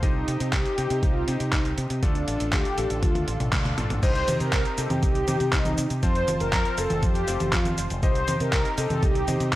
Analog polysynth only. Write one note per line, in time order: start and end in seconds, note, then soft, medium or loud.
0.03 0.54 D#4 loud
0.53 1.04 G4 loud
1.02 1.28 F4 loud
1.28 1.74 D#4 medium
2.03 2.49 D4 loud
2.53 2.99 G4 loud
3.03 3.49 F4 loud
4.03 4.41 C5 loud
4.40 4.79 A#4 loud
4.78 4.89 A4 loud
5.03 5.54 G4 loud
5.53 5.88 D#4 loud
6.03 6.42 C5 loud
6.41 6.79 A#4 loud
6.78 7.04 A4 loud
7.03 7.54 G4 loud
7.53 7.88 F4 loud
8.03 8.42 C5 loud
8.41 8.79 A#4 loud
8.78 9.04 A4 loud
9.03 9.49 G4 loud